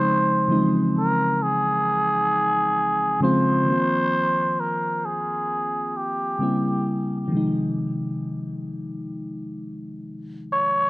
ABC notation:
X:1
M:4/4
L:1/8
Q:"Swing 16ths" 1/4=66
K:Db
V:1 name="Muted trumpet"
c z B A4 c- | c2 B A2 =G2 z | z6 z d |]
V:2 name="FM electric piano" clef=bass
[D,F,A,CE] [D,_F,=F,A,CE]4 z2 [D,F,A,CF] | [E,F,B,CF]6 [D,=G,B,C=E]2 | [C,E,F,A,E]8 |]